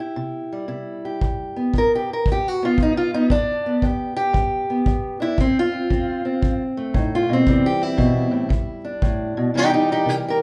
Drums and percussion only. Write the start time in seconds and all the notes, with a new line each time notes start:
1.21 kick
1.74 kick
2.26 kick
2.78 kick
3.30 kick
3.82 kick
4.34 kick
4.86 kick
5.38 kick
5.90 kick
6.43 kick
6.94 kick
7.47 kick
7.98 kick
8.50 kick
9.02 kick